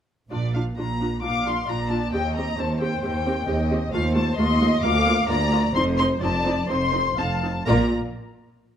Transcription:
0.30 0.71 A#1 medium
0.30 0.72 A#2 medium
0.30 0.39 D4 soft
0.30 0.39 F4 soft
0.30 0.52 D5 medium
0.54 0.62 D4 soft
0.54 0.62 F4 soft
0.54 0.62 F5 medium
0.76 1.17 A#1 medium
0.76 1.18 A#2 medium
0.76 0.85 D4 soft
0.76 0.85 F4 soft
0.76 1.23 A#5 medium
1.00 1.08 D4 soft
1.00 1.09 F4 soft
1.22 1.63 A#1 medium
1.22 1.63 A#2 medium
1.22 1.31 D4 soft
1.22 1.31 F4 soft
1.22 1.65 F5 medium
1.22 1.45 D6 medium
1.45 1.53 D4 medium
1.45 1.53 F4 soft
1.45 1.69 C6 medium
1.67 2.07 A#1 medium
1.67 2.08 A#2 medium
1.67 1.76 D4 soft
1.67 1.76 F4 medium
1.67 2.13 D5 medium
1.67 1.91 A#5 medium
1.89 1.97 D4 soft
1.89 1.98 F4 soft
1.89 2.13 A5 medium
2.12 2.52 D#2 medium
2.12 2.53 D#2 medium
2.12 2.20 C4 medium
2.12 2.20 G4 medium
2.12 2.58 D#5 medium
2.12 2.35 G5 medium
2.36 2.44 C4 medium
2.36 2.44 G4 soft
2.36 2.58 A#5 medium
2.58 2.97 D#2 medium
2.58 2.66 C4 medium
2.58 2.66 G4 medium
2.58 3.47 C5 medium
2.58 2.80 A5 medium
2.81 2.89 C4 medium
2.81 2.89 G4 medium
2.81 3.02 G5 medium
3.02 3.42 D#2 medium
3.02 3.11 C4 medium
3.02 3.11 G4 medium
3.02 3.69 G5 medium
3.26 3.34 C4 medium
3.26 3.34 G4 medium
3.46 3.87 D#2 medium
3.46 3.55 C4 medium
3.46 3.55 G4 medium
3.46 3.90 D#5 medium
3.71 3.79 C4 medium
3.71 3.79 G4 medium
3.91 4.32 D#2 medium
3.91 4.00 A3 medium
3.91 4.00 F4 medium
3.91 4.36 C5 medium
3.91 4.13 F5 loud
4.14 4.22 A3 medium
4.14 4.22 F4 medium
4.14 4.37 A5 loud
4.36 4.77 D#2 medium
4.36 4.45 A3 medium
4.36 4.45 F4 medium
4.36 4.82 D#5 medium
4.36 4.82 C6 loud
4.60 4.68 A3 medium
4.60 4.68 F4 medium
4.81 5.23 D2 medium
4.81 4.91 A#3 medium
4.81 4.91 F4 medium
4.81 5.28 F5 loud
4.81 5.27 D6 loud
5.06 5.14 A#3 medium
5.06 5.14 F4 medium
5.27 5.69 D2 medium
5.27 5.36 A#3 medium
5.27 5.36 F4 medium
5.27 5.74 D5 medium
5.27 5.74 A#5 loud
5.51 5.59 A#3 medium
5.51 5.60 F4 medium
5.74 6.16 F1 medium
5.74 6.16 F2 medium
5.74 5.82 C4 medium
5.74 5.83 D#4 medium
5.74 6.20 C5 medium
5.74 5.83 C6 loud
5.98 6.06 C4 medium
5.98 6.06 D#4 medium
5.98 6.06 C6 loud
6.21 6.63 F1 medium
6.21 6.63 F2 medium
6.21 6.30 C4 medium
6.21 6.30 D#4 medium
6.21 6.68 D5 medium
6.21 6.68 A5 loud
6.45 6.53 C4 medium
6.45 6.53 D#4 medium
6.68 7.12 F1 medium
6.68 7.11 F2 medium
6.68 6.77 C4 medium
6.68 6.76 D#4 medium
6.68 7.17 C5 medium
6.68 7.16 C6 loud
6.92 7.00 C4 medium
6.92 7.00 D#4 medium
7.17 7.61 F1 medium
7.17 7.61 F2 medium
7.17 7.25 C4 medium
7.17 7.25 D#4 medium
7.17 7.42 F5 medium
7.17 7.67 A5 medium
7.42 7.50 C4 soft
7.42 7.50 D#4 medium
7.66 7.94 A#1 medium
7.66 7.93 A#2 medium
7.66 7.93 A#3 medium
7.66 7.93 F4 medium
7.66 7.94 A#4 medium
7.66 7.93 D5 medium
7.66 7.94 A#5 medium

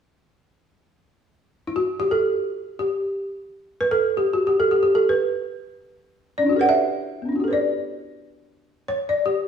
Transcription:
1.67 1.75 E4 medium
1.76 2.00 F#4 medium
2.00 2.11 G4 medium
2.11 2.74 A4 medium
2.79 3.42 G4 medium
3.81 3.92 B4 medium
3.91 4.17 A4 medium
4.17 4.32 G4 medium
4.33 4.48 F#4 medium
4.47 4.60 G4 medium
4.60 4.70 A4 medium
4.71 4.82 G4 medium
4.83 4.95 G4 medium
4.95 5.09 A4 medium
5.09 5.91 B4 medium
6.38 6.52 C#4 soft
6.38 6.62 D5 medium
6.43 6.56 D4 soft
6.43 6.59 E4 soft
6.49 6.63 F#4 soft
6.49 6.66 G4 soft
6.56 6.70 A4 soft
6.56 6.73 B4 medium
6.61 6.76 C#5 medium
6.61 6.69 F#5 medium
6.66 6.80 D5 medium
6.66 7.56 E5 medium
7.22 7.36 B3 soft
7.22 7.39 C#4 soft
7.29 7.43 D4 soft
7.29 7.46 E4 soft
7.36 7.50 F#4 soft
7.40 7.54 G4 soft
7.44 7.57 A4 soft
7.44 7.61 B4 soft
7.51 7.64 C#5 soft
7.51 8.43 D5 medium
8.88 9.09 C#5 medium
9.09 9.25 D5 medium
9.26 9.48 G4 medium

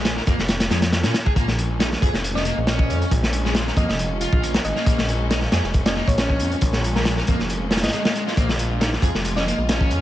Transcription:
0.00 0.21 A#1 loud
0.00 0.16 G#3 medium
0.05 snare loud
0.05 closed hi-hat medium
0.17 0.21 A#4 medium
0.17 snare soft
0.27 0.35 F2 medium
0.27 0.38 A#3 medium
0.27 kick loud
0.27 closed hi-hat medium
0.39 0.70 F1 loud
0.39 snare medium
0.48 snare loud
0.48 closed hi-hat medium
0.60 snare medium
0.60 closed hi-hat medium
0.70 1.06 F2 medium
0.70 0.79 G#3 medium
0.70 snare loud
0.70 closed hi-hat medium
0.82 snare loud
0.82 closed hi-hat medium
0.93 snare medium
0.93 closed hi-hat medium
1.04 1.11 A#2 medium
1.04 1.14 C#4 loud
1.04 snare medium
1.04 closed hi-hat medium
1.14 snare loud
1.14 closed hi-hat medium
1.26 1.33 G#4 medium
1.26 kick medium
1.36 1.96 A#1 medium
1.36 10.01 G#3 medium
1.36 1.47 A#3 medium
1.36 10.01 A#3 medium
1.36 8.35 C#4 medium
1.36 kick loud
1.36 closed hi-hat medium
1.48 snare medium
1.58 closed hi-hat medium
1.80 1.88 D#4 medium
1.80 snare loud
1.80 closed hi-hat medium
1.92 snare medium
2.02 2.10 F2 medium
2.02 2.13 G#4 medium
2.02 kick medium
2.02 closed hi-hat medium
2.14 2.51 F1 medium
2.14 snare soft
2.24 closed hi-hat medium
2.35 2.42 C#4 medium
2.35 2.46 D#5 medium
2.35 snare soft
2.45 2.57 A#3 medium
2.45 closed hi-hat medium
2.57 2.91 A#1 loud
2.67 3.11 C#4 medium
2.67 snare loud
2.67 closed hi-hat medium
2.79 kick loud
2.89 3.04 F2 medium
2.89 closed hi-hat medium
3.02 closed hi-hat soft
3.11 3.71 A#1 medium
3.11 kick loud
3.11 closed hi-hat medium
3.23 snare medium
3.33 closed hi-hat medium
3.45 3.66 G#3 medium
3.45 snare soft
3.55 snare loud
3.55 closed hi-hat medium
3.67 3.71 A#4 medium
3.67 snare medium
3.77 3.85 F2 medium
3.77 3.88 A#3 medium
3.77 3.85 D#5 medium
3.77 kick medium
3.77 closed hi-hat medium
3.89 4.26 F1 medium
3.89 3.96 D#5 medium
3.89 snare soft
3.99 closed hi-hat medium
4.21 4.54 F4 loud
4.21 closed hi-hat medium
4.33 4.59 A#1 medium
4.33 kick loud
4.43 closed hi-hat medium
4.54 4.59 A#4 medium
4.54 snare loud
4.65 4.72 G#1 loud
4.65 5.09 D#5 medium
4.65 closed hi-hat medium
4.76 4.85 A#3 medium
4.76 snare soft
4.86 5.47 A#1 medium
4.86 4.98 A#3 medium
4.86 kick loud
4.86 closed hi-hat medium
4.98 snare medium
5.09 closed hi-hat medium
5.31 5.39 D#4 medium
5.31 snare loud
5.31 closed hi-hat medium
5.41 snare soft
5.52 5.60 F2 medium
5.52 5.64 G#4 medium
5.52 snare loud
5.52 closed hi-hat medium
5.63 6.01 F1 loud
5.63 snare soft
5.74 kick medium
5.74 closed hi-hat medium
5.86 5.93 C#4 medium
5.86 5.97 D#5 medium
5.86 snare loud
5.86 closed hi-hat medium
5.96 6.07 A#3 medium
5.96 snare soft
6.08 6.41 A#1 loud
6.08 6.15 C#5 medium
6.08 kick medium
6.08 closed hi-hat medium
6.18 6.61 C#4 medium
6.18 6.26 C#5 medium
6.18 snare loud
6.18 closed hi-hat medium
6.30 kick medium
6.40 6.55 F2 medium
6.40 closed hi-hat medium
6.52 closed hi-hat soft
6.61 7.22 A#1 loud
6.61 kick loud
6.61 closed hi-hat medium
6.73 snare medium
6.84 closed hi-hat medium
6.96 7.16 G#3 loud
6.96 7.06 A#4 medium
6.96 snare soft
7.05 snare loud
7.05 closed hi-hat medium
7.17 7.22 A#4 medium
7.17 snare soft
7.27 7.35 F2 medium
7.27 7.39 A#3 medium
7.27 kick medium
7.27 closed hi-hat medium
7.39 7.85 F1 medium
7.39 snare soft
7.50 closed hi-hat medium
7.71 7.77 A#3 medium
7.71 snare medium
7.71 closed hi-hat medium
7.77 snare medium
7.77 closed hi-hat medium
7.83 7.90 G#1 medium
7.83 7.90 D#5 medium
7.83 snare medium
7.83 closed hi-hat medium
7.88 snare medium
7.88 closed hi-hat medium
7.93 8.02 G#3 medium
7.93 8.01 D#5 medium
7.93 closed hi-hat medium
8.05 8.12 A#3 loud
8.05 snare loud
8.15 8.23 G#3 medium
8.15 closed hi-hat medium
8.27 8.31 F4 loud
8.27 snare soft
8.37 8.97 A#1 medium
8.37 8.48 A#3 medium
8.37 10.01 F4 medium
8.37 kick loud
8.37 closed hi-hat medium
8.49 snare medium
8.59 closed hi-hat medium
8.81 8.89 D#4 medium
8.81 snare loud
8.81 closed hi-hat medium
8.93 snare medium
9.02 9.10 F2 medium
9.02 9.14 G#4 medium
9.02 kick medium
9.02 closed hi-hat medium
9.14 9.52 F1 medium
9.14 snare medium
9.25 closed hi-hat medium
9.36 9.43 C#4 medium
9.36 9.47 D#5 medium
9.36 snare soft
9.47 9.58 A#3 medium
9.47 closed hi-hat medium
9.58 9.92 A#1 loud
9.69 10.01 C#4 medium
9.69 snare loud
9.69 closed hi-hat medium
9.81 kick loud
9.90 10.01 F2 medium
9.90 closed hi-hat medium

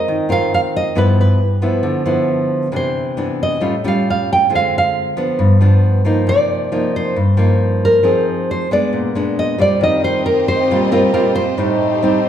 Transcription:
0.00 0.26 C4 soft
0.00 0.26 F4 soft
0.00 0.26 A#4 medium
0.00 0.32 D#5 medium
0.08 0.94 D#3 medium
0.29 0.92 C4 medium
0.29 0.92 F4 medium
0.29 0.92 A#4 medium
0.29 0.53 F5 medium
0.54 0.60 F5 medium
0.76 0.98 D#5 medium
0.95 1.82 G2 medium
0.95 1.39 F3 soft
0.95 1.40 B3 medium
0.95 1.40 E4 medium
0.95 1.17 B4 medium
1.21 2.48 B4 medium
1.62 2.03 F3 soft
1.62 2.03 B3 medium
1.62 2.03 E4 medium
1.83 2.70 D3 medium
2.06 2.69 F3 medium
2.06 2.69 B3 medium
2.06 2.69 E4 medium
2.72 3.59 C3 medium
2.72 3.13 E3 soft
2.72 3.14 D4 medium
2.76 3.43 C5 medium
3.17 3.60 E3 soft
3.17 3.60 B3 soft
3.17 3.60 D4 medium
3.43 3.82 D#5 medium
3.61 4.48 A2 medium
3.61 3.74 G3 soft
3.61 3.74 C#4 soft
3.61 3.74 F4 medium
3.84 4.47 G3 medium
3.84 4.47 C#4 medium
3.84 4.47 F4 medium
3.84 4.08 F5 medium
4.10 4.31 F5 medium
4.33 4.53 G5 medium
4.50 5.36 D3 medium
4.50 5.13 G#3 soft
4.50 5.13 C4 soft
4.50 5.13 F4 soft
4.55 4.75 F5 medium
4.78 6.04 F5 medium
5.17 5.57 F3 medium
5.17 5.58 B3 soft
5.17 5.58 D4 medium
5.39 6.25 G2 medium
5.61 6.01 F3 medium
5.61 6.02 B3 medium
5.61 6.02 D4 medium
6.05 6.68 F3 medium
6.05 6.68 A#3 medium
6.05 6.68 D#4 medium
6.27 7.13 C3 medium
6.27 6.90 D5 medium
6.72 7.16 F3 soft
6.72 7.16 A#3 medium
6.72 7.16 D#4 medium
6.96 7.57 C5 medium
7.16 8.02 G2 medium
7.37 8.00 F3 medium
7.37 8.00 A#3 medium
7.37 8.01 D#4 medium
7.85 8.25 A#4 medium
8.03 8.71 F3 medium
8.03 8.67 C4 soft
8.03 8.67 D#4 soft
8.03 8.67 G#4 medium
8.51 8.72 C5 medium
8.71 9.11 G#3 medium
8.71 9.11 B3 medium
8.71 9.12 D4 medium
8.71 9.39 D5 medium
8.93 9.79 A#2 medium
9.15 9.56 G#3 medium
9.15 9.56 B3 medium
9.15 9.56 D4 medium
9.39 9.61 D#5 medium
9.58 10.21 G3 medium
9.58 10.22 C4 soft
9.58 10.22 F4 medium
9.58 9.83 D5 medium
9.80 10.67 D#3 medium
9.80 11.56 C4 medium
9.80 11.54 C4 medium
9.80 11.56 F4 medium
9.80 11.56 G4 medium
9.80 11.56 D#5 medium
9.80 10.04 D#5 medium
10.04 10.25 C5 medium
10.26 10.48 A#4 medium
10.48 10.92 C5 medium
10.71 11.56 A#2 medium
10.71 10.89 G3 medium
10.71 10.89 C4 medium
10.71 10.89 F4 medium
10.92 11.10 G3 medium
10.92 11.10 C4 medium
10.92 11.10 F4 medium
10.92 11.13 A#4 medium
11.14 11.43 G3 medium
11.14 11.44 C4 medium
11.14 11.44 F4 medium
11.14 11.34 A#4 medium
11.35 12.29 C5 medium
11.57 12.29 A2 medium
11.57 11.98 G3 medium
11.57 12.29 A3 medium
11.57 11.99 C4 soft
11.57 12.29 D#4 medium
11.57 11.99 D#4 medium
11.57 12.29 G4 medium
11.57 12.29 C5 medium
12.03 12.29 G3 soft
12.03 12.29 C4 soft
12.03 12.29 D#4 medium

